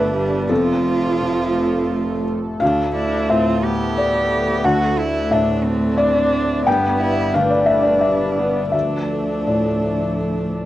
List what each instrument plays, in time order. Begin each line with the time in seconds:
Already playing: double bass G1, felt piano G2 D3 B4 D5 E5, viola A3, analog synth pad B3 G4 D5, cello D4
0.15 viola G3
0.48 double bass F1, felt piano F2 A4, viola F3, analog synth pad A3 A4, cello F4
1.21 felt piano C3
2.60 double bass D2, felt piano D2 F5, viola A3, cello D4
2.96 viola D4, cello E4
3.29 felt piano A2 E5, viola C4, cello F4
3.64 viola B3, cello G4
3.98 felt piano D5
4.64 felt piano D2 F#5, viola A3, cello F#4, analog synth pad D5
4.98 viola A3, cello E4
5.31 felt piano A2 E5, cello D4
5.63 cello C4
5.97 viola D4, felt piano D5
6.66 double bass G1, felt piano G2 G5, analog synth pad G3 B4, viola B3, cello B3
7.01 cello E4
7.34 felt piano D3 F5, viola A3, cello D4
7.50 felt piano D5
7.66 felt piano E5
7.82 felt piano D5
8.01 viola G3, felt piano E5
8.39 viola B3
8.72 felt piano D2 E5, double bass D2, analog synth pad F3 A4, viola A3, cello D4
9.47 felt piano A2 D5